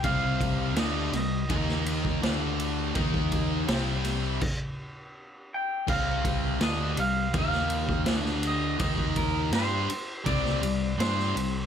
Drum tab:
CC |----------------|--------x-------|x---------------|----------------|
RD |x-x-x-x-x-x-x-x-|x-x-x-x---------|--x-x-x-x-x-x-x-|x-x-x-x-x-x-x-x-|
SD |----o-o--o--o---|----o-o---------|----o----o--oo--|----o----o--oo--|
BD |o-o-----o--o----|ooo-----o-------|o-o-----o--o----|ooo-----o-------|